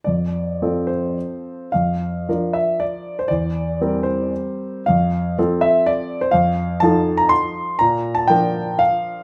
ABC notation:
X:1
M:3/4
L:1/16
Q:1/4=119
K:F
V:1 name="Grand piano"
d6 c6 | f6 e2 d3 c | d6 c6 | f6 e2 d3 c |
f4 a3 b c'4 | b3 a g4 f4 |]
V:2 name="Grand piano"
F,,4 [F,CA]8 | F,,4 [F,DB]8 | E,,4 [G,CB]8 | F,,4 [F,CA]8 |
F,,4 [F,_EA]8 | B,,4 [F,DB]8 |]